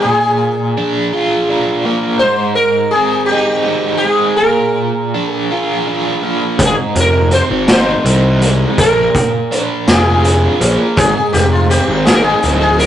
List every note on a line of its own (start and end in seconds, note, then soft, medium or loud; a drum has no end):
0.02 1.86 A#2 medium
0.02 1.44 G#4 medium
0.77 1.48 D4 medium
1.13 2.22 F4 medium
1.49 2.22 D4 medium
1.85 2.22 A#3 medium
2.19 4.05 G#2 medium
2.19 2.55 C5 loud
2.55 2.95 A#4 medium
2.91 3.66 C4 medium
2.91 3.25 G#4 medium
3.26 3.97 G4 medium
3.32 4.41 D#4 medium
3.68 4.41 C4 medium
3.97 4.08 G4 medium
4.05 4.44 G#3 medium
4.05 4.36 G#4 medium
4.37 5.34 A#4 medium
4.41 6.23 A#2 medium
5.14 5.86 D4 medium
5.34 5.81 G#4 medium
5.51 6.60 F4 medium
5.87 6.60 D4 medium
6.23 6.60 A#3 medium
6.59 6.74 G#1 loud
6.59 8.42 G#2 medium
6.59 kick loud
6.59 closed hi-hat loud
6.65 6.74 G#4 loud
6.95 7.40 F1 loud
6.95 closed hi-hat medium
7.00 7.32 A#4 medium
7.31 8.04 C4 medium
7.31 7.43 C5 medium
7.31 closed hi-hat medium
7.50 7.95 G#1 medium
7.67 8.78 D#4 medium
7.67 8.80 C5 loud
7.67 snare loud
7.67 closed hi-hat medium
8.04 8.64 C2 loud
8.04 8.78 C4 medium
8.04 closed hi-hat medium
8.41 8.81 G#3 medium
8.41 closed hi-hat medium
8.78 9.08 A#1 loud
8.78 10.61 A#2 medium
8.78 9.85 A#4 loud
8.78 kick loud
8.78 closed hi-hat medium
9.15 kick medium
9.15 closed hi-hat medium
9.51 10.24 D4 medium
9.51 closed hi-hat medium
9.87 10.47 F1 medium
9.87 10.98 F4 medium
9.87 10.66 G#4 medium
9.87 snare loud
9.87 closed hi-hat medium
10.24 10.98 D4 medium
10.24 closed hi-hat medium
10.60 10.76 A#1 medium
10.60 10.97 A#3 medium
10.60 closed hi-hat medium
10.97 11.12 G#1 loud
10.97 12.80 G#2 medium
10.97 11.32 G#4 loud
10.97 kick loud
10.97 closed hi-hat loud
11.33 11.78 F1 medium
11.33 11.51 G4 medium
11.33 closed hi-hat medium
11.52 11.69 F4 medium
11.70 12.43 C4 medium
11.70 12.05 G4 medium
11.70 closed hi-hat medium
11.88 12.32 G#1 medium
12.05 12.86 D#4 medium
12.05 12.13 G#4 medium
12.05 snare loud
12.05 closed hi-hat loud
12.15 12.21 A#4 medium
12.22 12.60 G#4 medium
12.42 12.86 D1 loud
12.42 12.86 C4 medium
12.42 closed hi-hat medium
12.61 12.80 G#4 medium
12.79 12.86 G#3 medium
12.79 12.86 A#4 medium
12.79 closed hi-hat medium